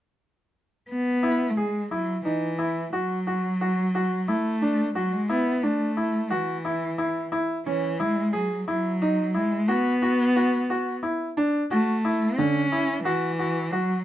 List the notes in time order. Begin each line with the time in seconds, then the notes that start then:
0.90 B3
1.23 E4
1.49 A3
1.57 G#3 G#4
1.91 F#3 E4
2.25 E3 D#4
2.59 E4
2.93 F#3 F#4
3.27 F#4
3.61 F#4
3.95 F#4
4.28 A3 E4
4.62 D4
4.95 F#3 F#4
5.13 G#3
5.29 B3 E4
5.63 A3 D4
5.97 E4
6.30 E3 F#4
6.65 E4
6.98 E4
7.32 E4
7.66 E3 C#4
8.00 G#3 E4
8.33 F#3 G#4
8.67 F#3 E4
9.02 D#4
9.34 G#3 E4
9.68 B3 F#4
10.02 F#4
10.36 F#4
10.70 F#4
11.03 E4
11.37 D4
11.70 A3 F#4
12.05 E4
12.37 D3 C#4
12.72 E4
13.04 E3 F#4
13.39 F#4
13.71 F#3 F#4